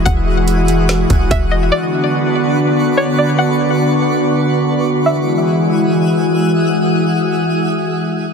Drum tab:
HH |x-xxxxx-|--------|--------|--------|
SD |----o---|--------|--------|--------|
BD |o----oo-|--------|--------|--------|

HH |--------|
SD |--------|
BD |--------|